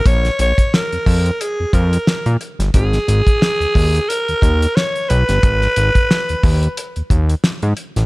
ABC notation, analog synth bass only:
X:1
M:4/4
L:1/16
Q:"Swing 16ths" 1/4=89
K:Abmix
V:1 name="Analog synth bass" clef=bass
B,,,2 B,,, z2 F,, F,,2 z F,, F,,2 z B,, z =G,,, | A,,,2 A,,, z2 E,, E,,2 z E,, E,,2 z2 _C,, =G,,, | A,,,2 A,,, z2 E,, E,,2 z E,, E,,2 z A,, z =A,,, |]